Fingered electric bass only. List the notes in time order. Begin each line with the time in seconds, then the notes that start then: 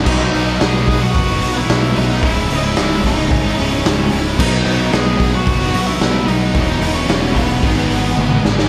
0.06 B1
0.34 B1
0.62 B1
1.15 F#1
1.42 B1
1.70 B1
1.97 B1
2.23 C#1
2.52 C#1
2.78 C#1
3.31 G#1
3.59 C#1
3.86 C#1
4.13 C#1
4.40 B1
4.67 B1
4.94 B1
5.47 F#1
5.75 B1
6.01 B1
6.28 B1
6.55 E1
6.81 E1
7.08 E1
7.63 G#1
7.90 G#1
8.18 G#1
8.45 G#1